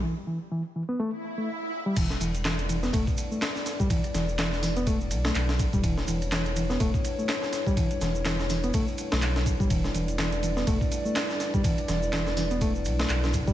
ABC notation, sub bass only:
X:1
M:4/4
L:1/16
Q:"Swing 16ths" 1/4=124
K:Edor
V:1 name="Sub bass" clef=bass
z16 | E,,,2 E,,,6 E,,, z6 z | z2 E,,,8 B,,,2 B,,,3 E,,, | E,,,2 E,,,6 E,,, z6 z |
z2 E,,,6 z3 B,,,4 B,,, | E,,,2 E,,,6 E,,, z6 z | z2 E,,,8 B,,,2 B,,,3 E,,, |]